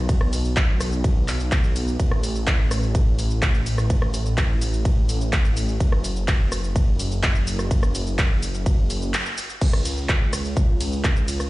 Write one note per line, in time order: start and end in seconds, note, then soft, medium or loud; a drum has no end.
0.00 1.97 B1 medium
0.09 kick loud
0.09 ride medium
0.09 shaker soft
0.21 cross-stick medium
0.33 open hi-hat loud
0.33 shaker medium
0.45 shaker soft
0.57 kick loud
0.57 clap loud
0.57 ride medium
0.57 shaker soft
0.81 cross-stick medium
0.81 open hi-hat loud
0.81 shaker medium
0.93 shaker soft
1.04 kick loud
1.04 ride medium
1.04 shaker soft
1.28 clap medium
1.28 open hi-hat loud
1.28 shaker medium
1.40 shaker soft
1.52 kick loud
1.52 clap loud
1.52 ride medium
1.52 shaker soft
1.64 shaker soft
1.76 open hi-hat loud
1.76 shaker medium
1.88 shaker soft
2.00 5.78 A1 medium
2.00 kick loud
2.00 ride medium
2.00 shaker soft
2.11 cross-stick medium
2.23 open hi-hat loud
2.23 shaker medium
2.35 shaker soft
2.47 kick loud
2.47 clap loud
2.47 ride medium
2.47 shaker soft
2.71 cross-stick medium
2.71 open hi-hat loud
2.71 shaker medium
2.83 shaker soft
2.95 kick loud
2.95 ride medium
2.95 shaker soft
3.19 open hi-hat loud
3.19 shaker medium
3.31 shaker soft
3.42 kick loud
3.42 clap loud
3.42 ride medium
3.42 shaker soft
3.54 shaker soft
3.66 open hi-hat loud
3.66 shaker medium
3.78 cross-stick medium
3.78 shaker soft
3.90 kick loud
3.90 ride medium
3.90 shaker soft
4.02 cross-stick medium
4.14 open hi-hat loud
4.14 shaker medium
4.26 shaker soft
4.38 kick loud
4.38 clap loud
4.38 ride medium
4.38 shaker soft
4.61 open hi-hat loud
4.61 shaker medium
4.73 shaker soft
4.85 kick loud
4.85 ride medium
4.85 shaker soft
5.09 open hi-hat loud
5.09 shaker medium
5.21 shaker soft
5.33 kick loud
5.33 clap loud
5.33 ride medium
5.33 shaker soft
5.45 shaker soft
5.57 open hi-hat loud
5.57 shaker medium
5.69 shaker soft
5.80 9.14 F#1 medium
5.80 kick loud
5.80 ride medium
5.80 shaker soft
5.92 cross-stick medium
6.04 open hi-hat loud
6.04 shaker medium
6.16 shaker soft
6.28 kick loud
6.28 clap loud
6.28 ride medium
6.28 shaker soft
6.52 cross-stick medium
6.52 open hi-hat loud
6.52 shaker medium
6.64 shaker soft
6.76 kick loud
6.76 ride medium
6.76 shaker soft
6.99 open hi-hat loud
6.99 shaker medium
7.12 shaker soft
7.23 kick loud
7.23 clap loud
7.23 ride medium
7.23 shaker soft
7.35 shaker soft
7.47 open hi-hat loud
7.47 shaker medium
7.59 cross-stick medium
7.59 shaker soft
7.71 kick loud
7.71 ride medium
7.71 shaker soft
7.83 cross-stick medium
7.83 shaker soft
7.95 open hi-hat loud
7.95 shaker medium
8.07 shaker soft
8.19 kick loud
8.19 clap loud
8.19 ride medium
8.19 shaker soft
8.42 open hi-hat loud
8.42 shaker medium
8.54 shaker soft
8.66 kick loud
8.66 ride medium
8.66 shaker soft
8.90 open hi-hat loud
8.90 shaker medium
9.02 shaker soft
9.14 clap loud
9.14 ride medium
9.14 shaker soft
9.26 shaker soft
9.38 open hi-hat loud
9.38 shaker medium
9.50 shaker soft
9.61 11.50 C#2 medium
9.61 kick loud
9.61 ride medium
9.61 crash loud
9.61 shaker soft
9.73 cross-stick medium
9.85 open hi-hat loud
9.85 ride medium
9.85 shaker medium
9.97 shaker soft
10.09 kick loud
10.09 clap loud
10.09 ride medium
10.09 shaker soft
10.33 cross-stick medium
10.33 open hi-hat loud
10.33 ride medium
10.33 shaker medium
10.45 shaker soft
10.57 kick loud
10.57 ride medium
10.57 shaker soft
10.81 open hi-hat loud
10.81 ride medium
10.81 shaker medium
10.93 shaker soft
11.04 kick loud
11.04 clap loud
11.04 ride medium
11.04 shaker soft
11.16 shaker soft
11.28 open hi-hat loud
11.28 ride medium
11.28 shaker medium
11.40 cross-stick medium
11.40 shaker soft